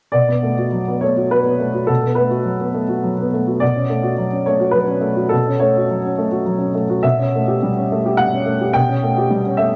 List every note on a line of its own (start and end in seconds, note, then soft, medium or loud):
0.12 1.85 B2 soft
0.12 1.01 D5 medium
0.28 0.52 B3 soft
0.43 0.67 A3 soft
0.58 0.82 F#4 soft
0.72 0.96 F#3 soft
0.88 1.11 B3 soft
1.01 1.25 A3 soft
1.01 1.31 C#5 medium
1.17 1.40 F#4 soft
1.31 1.54 F#3 soft
1.31 1.89 B4 medium
1.45 1.69 B3 soft
1.60 1.83 A3 soft
1.74 1.97 F#4 soft
1.87 3.57 B2 soft
1.87 2.16 A4 medium
2.03 2.26 B3 soft
2.15 2.40 A3 soft
2.15 3.31 B4 medium
2.30 2.54 F#4 soft
2.44 2.68 F#3 soft
2.60 2.83 B3 soft
2.74 2.97 A3 soft
2.89 3.12 F#4 soft
3.03 3.26 F#3 soft
3.19 3.41 B3 soft
3.34 3.56 A3 soft
3.47 3.61 F#4 soft
3.60 5.29 B2 soft
3.60 4.47 D5 medium
3.76 3.99 C#4 soft
3.90 4.13 A3 soft
4.03 4.27 F#4 soft
4.18 4.41 F#3 soft
4.32 4.56 C#4 soft
4.46 4.70 A3 soft
4.46 4.75 C#5 medium
4.60 4.84 F#4 soft
4.71 4.98 F#3 soft
4.71 5.30 B4 medium
4.87 5.11 C#4 soft
5.01 5.25 A3 soft
5.16 5.40 F#4 soft
5.29 6.98 B2 soft
5.29 5.59 A4 medium
5.47 5.69 C#4 soft
5.60 5.83 A3 soft
5.60 6.74 C#5 medium
5.77 5.98 F#4 soft
5.90 6.12 F#3 soft
6.05 6.27 C#4 soft
6.18 6.41 A3 soft
6.31 6.54 F#4 soft
6.46 6.68 F#3 soft
6.58 6.82 C#4 soft
6.75 6.97 A3 soft
6.90 7.03 F#4 soft
7.03 8.70 B2 medium
7.03 8.17 E5 medium
7.19 7.41 C#4 soft
7.36 7.56 A3 soft
7.48 7.69 G4 soft
7.63 7.84 G3 soft
7.76 7.98 C#4 soft
7.92 8.13 A3 soft
8.06 8.27 G4 soft
8.17 8.40 G3 soft
8.17 8.74 F#5 medium
8.33 8.55 C#4 soft
8.46 8.68 A3 soft
8.61 8.83 G4 soft
8.73 9.76 B2 medium
8.73 9.60 G5 medium
8.89 9.11 C#4 soft
9.03 9.26 A3 soft
9.18 9.40 G4 soft
9.30 9.54 G3 soft
9.46 9.68 C#4 soft
9.57 9.76 A3 soft
9.57 9.76 E5 medium